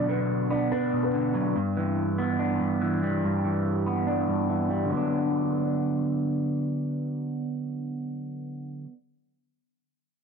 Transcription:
0, 0, Header, 1, 3, 480
1, 0, Start_track
1, 0, Key_signature, 2, "minor"
1, 0, Tempo, 419580
1, 1777, Time_signature, 4, 2, 24, 8
1, 11712, End_track
2, 0, Start_track
2, 0, Title_t, "Grand piano"
2, 0, Program_c, 0, 0
2, 97, Note_on_c, 0, 71, 77
2, 106, Note_on_c, 0, 59, 58
2, 548, Note_off_c, 0, 71, 0
2, 553, Note_off_c, 0, 59, 0
2, 577, Note_on_c, 0, 74, 80
2, 586, Note_on_c, 0, 62, 66
2, 760, Note_off_c, 0, 74, 0
2, 766, Note_off_c, 0, 62, 0
2, 817, Note_on_c, 0, 71, 83
2, 825, Note_on_c, 0, 59, 77
2, 1155, Note_off_c, 0, 71, 0
2, 1160, Note_off_c, 0, 59, 0
2, 1177, Note_on_c, 0, 71, 77
2, 1186, Note_on_c, 0, 59, 62
2, 1741, Note_off_c, 0, 71, 0
2, 1746, Note_off_c, 0, 59, 0
2, 11712, End_track
3, 0, Start_track
3, 0, Title_t, "Clean electric guitar"
3, 0, Program_c, 1, 27
3, 0, Note_on_c, 1, 47, 89
3, 0, Note_on_c, 1, 54, 83
3, 100, Note_on_c, 1, 50, 83
3, 577, Note_on_c, 1, 59, 78
3, 819, Note_off_c, 1, 54, 0
3, 820, Note_on_c, 1, 62, 96
3, 1047, Note_off_c, 1, 47, 0
3, 1060, Note_on_c, 1, 47, 73
3, 1287, Note_off_c, 1, 50, 0
3, 1300, Note_on_c, 1, 50, 90
3, 1537, Note_on_c, 1, 54, 84
3, 1777, Note_off_c, 1, 47, 0
3, 1777, Note_off_c, 1, 54, 0
3, 1777, Note_off_c, 1, 59, 0
3, 1779, Note_off_c, 1, 50, 0
3, 1779, Note_off_c, 1, 62, 0
3, 1781, Note_on_c, 1, 43, 93
3, 2022, Note_on_c, 1, 52, 81
3, 2496, Note_on_c, 1, 59, 88
3, 2738, Note_on_c, 1, 62, 94
3, 2963, Note_off_c, 1, 43, 0
3, 2976, Note_on_c, 1, 43, 77
3, 3203, Note_off_c, 1, 52, 0
3, 3217, Note_on_c, 1, 52, 87
3, 3457, Note_off_c, 1, 59, 0
3, 3462, Note_on_c, 1, 55, 87
3, 3688, Note_off_c, 1, 43, 0
3, 3702, Note_on_c, 1, 43, 88
3, 3923, Note_off_c, 1, 52, 0
3, 3937, Note_off_c, 1, 62, 0
3, 3937, Note_on_c, 1, 52, 77
3, 4421, Note_on_c, 1, 59, 86
3, 4650, Note_off_c, 1, 55, 0
3, 4655, Note_on_c, 1, 62, 94
3, 4878, Note_off_c, 1, 43, 0
3, 4892, Note_on_c, 1, 43, 80
3, 5123, Note_off_c, 1, 52, 0
3, 5137, Note_on_c, 1, 52, 78
3, 5373, Note_off_c, 1, 62, 0
3, 5378, Note_on_c, 1, 55, 87
3, 5548, Note_on_c, 1, 50, 81
3, 5590, Note_off_c, 1, 52, 0
3, 5594, Note_on_c, 1, 54, 74
3, 5615, Note_off_c, 1, 43, 0
3, 5618, Note_off_c, 1, 55, 0
3, 5619, Note_off_c, 1, 59, 0
3, 5640, Note_on_c, 1, 59, 74
3, 5685, Note_on_c, 1, 62, 88
3, 10117, Note_off_c, 1, 50, 0
3, 10163, Note_off_c, 1, 54, 0
3, 10209, Note_off_c, 1, 59, 0
3, 10254, Note_off_c, 1, 62, 0
3, 11712, End_track
0, 0, End_of_file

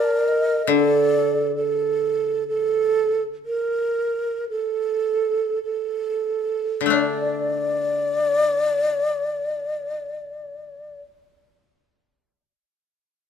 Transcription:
0, 0, Header, 1, 4, 480
1, 0, Start_track
1, 0, Tempo, 859599
1, 875, Tempo, 917431
1, 1355, Time_signature, 4, 2, 24, 8
1, 1355, Tempo, 967742
1, 1835, Tempo, 1039861
1, 2315, Tempo, 1153846
1, 2795, Tempo, 1271186
1, 4715, Tempo, 1301518
1, 5659, End_track
2, 0, Start_track
2, 0, Title_t, "Shakuhachi"
2, 0, Program_c, 0, 77
2, 0, Note_on_c, 0, 74, 79
2, 156, Note_on_c, 0, 75, 73
2, 164, Note_off_c, 0, 74, 0
2, 386, Note_on_c, 0, 74, 75
2, 394, Note_off_c, 0, 75, 0
2, 875, Note_off_c, 0, 74, 0
2, 3268, Note_on_c, 0, 73, 83
2, 3317, Note_off_c, 0, 73, 0
2, 3317, Note_on_c, 0, 74, 83
2, 4811, Note_off_c, 0, 74, 0
2, 5659, End_track
3, 0, Start_track
3, 0, Title_t, "Flute"
3, 0, Program_c, 1, 73
3, 0, Note_on_c, 1, 70, 79
3, 367, Note_off_c, 1, 70, 0
3, 371, Note_on_c, 1, 69, 89
3, 865, Note_off_c, 1, 69, 0
3, 868, Note_on_c, 1, 69, 80
3, 1350, Note_off_c, 1, 69, 0
3, 1353, Note_on_c, 1, 69, 87
3, 1725, Note_off_c, 1, 69, 0
3, 1836, Note_on_c, 1, 70, 74
3, 2312, Note_off_c, 1, 70, 0
3, 2315, Note_on_c, 1, 69, 75
3, 2788, Note_off_c, 1, 69, 0
3, 2791, Note_on_c, 1, 69, 70
3, 3264, Note_off_c, 1, 69, 0
3, 3266, Note_on_c, 1, 74, 67
3, 3500, Note_off_c, 1, 74, 0
3, 5659, End_track
4, 0, Start_track
4, 0, Title_t, "Koto"
4, 0, Program_c, 2, 107
4, 376, Note_on_c, 2, 50, 55
4, 1830, Note_off_c, 2, 50, 0
4, 3233, Note_on_c, 2, 50, 47
4, 3253, Note_on_c, 2, 57, 46
4, 3269, Note_on_c, 2, 62, 46
4, 4792, Note_off_c, 2, 50, 0
4, 4811, Note_off_c, 2, 57, 0
4, 4827, Note_off_c, 2, 62, 0
4, 5659, End_track
0, 0, End_of_file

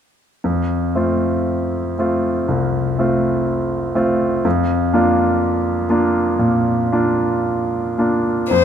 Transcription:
0, 0, Header, 1, 3, 480
1, 0, Start_track
1, 0, Key_signature, -1, "major"
1, 0, Tempo, 1034483
1, 202, Time_signature, 4, 2, 24, 8
1, 1156, Tempo, 975610
1, 3076, Tempo, 1052632
1, 4102, End_track
2, 0, Start_track
2, 0, Title_t, "Violin"
2, 0, Program_c, 0, 40
2, 4040, Note_on_c, 0, 72, 49
2, 4102, Note_off_c, 0, 72, 0
2, 4102, End_track
3, 0, Start_track
3, 0, Title_t, "Grand piano"
3, 0, Program_c, 1, 0
3, 205, Note_on_c, 1, 41, 33
3, 280, Control_c, 1, 64, 127
3, 440, Note_off_c, 1, 41, 0
3, 442, Note_on_c, 1, 60, 31
3, 443, Note_on_c, 1, 57, 30
3, 447, Note_on_c, 1, 65, 31
3, 901, Note_off_c, 1, 57, 0
3, 901, Note_off_c, 1, 60, 0
3, 903, Note_off_c, 1, 65, 0
3, 922, Note_on_c, 1, 57, 27
3, 923, Note_on_c, 1, 60, 26
3, 927, Note_on_c, 1, 65, 34
3, 1138, Note_off_c, 1, 57, 0
3, 1138, Note_off_c, 1, 60, 0
3, 1140, Note_off_c, 1, 65, 0
3, 1152, Note_on_c, 1, 36, 34
3, 1390, Note_off_c, 1, 36, 0
3, 1400, Note_on_c, 1, 57, 33
3, 1403, Note_on_c, 1, 60, 30
3, 1404, Note_on_c, 1, 65, 31
3, 1861, Note_off_c, 1, 57, 0
3, 1862, Note_off_c, 1, 60, 0
3, 1863, Note_off_c, 1, 65, 0
3, 1874, Note_on_c, 1, 57, 35
3, 1875, Note_on_c, 1, 60, 35
3, 1878, Note_on_c, 1, 65, 38
3, 2098, Note_off_c, 1, 57, 0
3, 2098, Note_off_c, 1, 60, 0
3, 2100, Note_off_c, 1, 65, 0
3, 2119, Note_on_c, 1, 41, 43
3, 2127, Control_c, 1, 64, 0
3, 2201, Control_c, 1, 64, 127
3, 2349, Note_off_c, 1, 41, 0
3, 2358, Note_on_c, 1, 58, 33
3, 2358, Note_on_c, 1, 62, 37
3, 2361, Note_on_c, 1, 65, 39
3, 2810, Note_off_c, 1, 58, 0
3, 2810, Note_off_c, 1, 62, 0
3, 2811, Note_off_c, 1, 65, 0
3, 2831, Note_on_c, 1, 58, 34
3, 2832, Note_on_c, 1, 65, 37
3, 2834, Note_on_c, 1, 62, 33
3, 3056, Note_off_c, 1, 58, 0
3, 3056, Note_off_c, 1, 65, 0
3, 3057, Note_off_c, 1, 62, 0
3, 3074, Note_on_c, 1, 46, 37
3, 3304, Note_off_c, 1, 46, 0
3, 3317, Note_on_c, 1, 58, 32
3, 3318, Note_on_c, 1, 62, 33
3, 3321, Note_on_c, 1, 65, 34
3, 3781, Note_off_c, 1, 58, 0
3, 3781, Note_off_c, 1, 62, 0
3, 3783, Note_off_c, 1, 65, 0
3, 3800, Note_on_c, 1, 58, 26
3, 3803, Note_on_c, 1, 65, 33
3, 3804, Note_on_c, 1, 62, 28
3, 4020, Note_off_c, 1, 58, 0
3, 4021, Note_off_c, 1, 65, 0
3, 4022, Note_off_c, 1, 62, 0
3, 4041, Note_on_c, 1, 41, 36
3, 4045, Control_c, 1, 64, 0
3, 4102, Note_off_c, 1, 41, 0
3, 4102, End_track
0, 0, End_of_file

